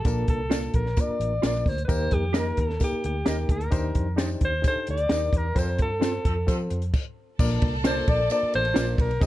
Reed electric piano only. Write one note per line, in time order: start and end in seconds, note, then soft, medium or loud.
0.06 0.70 A#2 medium
0.06 0.40 A#3 medium
0.06 0.40 D4 medium
0.06 0.40 F4 medium
0.06 0.40 A#4 medium
0.52 0.86 A#3 medium
0.52 0.86 D4 medium
0.52 0.86 F4 medium
0.52 0.86 A4 medium
0.98 1.32 A#3 medium
0.98 1.03 C#4 soft
0.98 1.32 F4 medium
0.98 1.32 A#4 medium
1.04 1.35 D4 medium
1.42 1.77 A#3 medium
1.42 1.77 D4 medium
1.42 1.77 F4 medium
1.42 1.77 A#4 medium
1.88 2.53 D#3 medium
1.88 2.23 A#3 medium
1.88 2.23 D#4 medium
1.88 2.23 G4 medium
1.88 2.23 A#4 loud
2.34 2.69 A#3 medium
2.34 2.69 D#4 medium
2.34 2.69 G4 medium
2.34 2.70 A#4 medium
2.80 3.15 A#3 medium
2.80 3.15 D#4 medium
2.80 3.15 G4 medium
2.80 3.15 A#4 medium
3.25 3.60 A#3 medium
3.25 3.61 D#4 medium
3.25 3.61 G4 medium
3.25 3.61 A#4 medium
3.71 4.37 D#3 medium
3.71 4.06 D4 medium
3.71 4.07 D#4 medium
3.71 4.06 G4 medium
3.71 4.07 C5 loud
4.16 4.52 D4 medium
4.16 4.52 D#4 medium
4.16 4.52 G4 medium
4.16 4.53 C5 medium
4.62 4.98 D4 medium
4.62 4.98 D#4 medium
4.62 4.98 G4 medium
4.62 4.69 G#4 medium
4.68 5.01 A4 medium
5.09 5.44 D4 medium
5.09 5.44 D#4 medium
5.09 5.44 G4 medium
5.09 5.44 A#4 medium
5.55 5.90 C4 medium
5.55 5.90 F4 medium
5.55 5.90 A4 medium
5.55 5.90 C5 loud
5.99 6.35 C4 medium
5.99 6.36 F4 medium
5.99 6.07 G#4 medium
5.99 6.36 C5 medium
6.06 6.38 A4 medium
6.47 6.82 C4 medium
6.47 6.82 F4 medium
6.47 6.53 G4 medium
6.47 6.82 C5 loud
6.53 6.85 A4 medium
7.39 8.04 A#2 medium
7.39 7.74 A#3 medium
7.39 7.74 D4 medium
7.39 7.74 F4 medium
7.39 7.74 A#4 medium
7.39 7.74 D5 loud
7.85 8.19 A#3 medium
7.85 8.20 D4 medium
7.85 8.20 F4 medium
7.85 8.20 A#4 medium
7.85 7.91 C#5 medium
7.91 8.23 D5 medium
8.30 8.65 A#3 medium
8.30 8.65 D4 medium
8.30 8.65 F4 medium
8.30 8.66 A#4 medium
8.30 8.37 C5 medium
8.37 8.68 D5 medium
8.75 9.10 A#3 medium
8.75 9.10 D4 medium
8.75 9.10 F4 medium
8.75 9.10 A#4 medium
8.75 9.11 D5 medium
9.21 9.26 C3 medium
9.21 9.26 C4 medium
9.21 9.26 D#4 medium
9.21 9.26 G4 medium
9.21 9.26 C5 medium
9.21 9.26 D#5 medium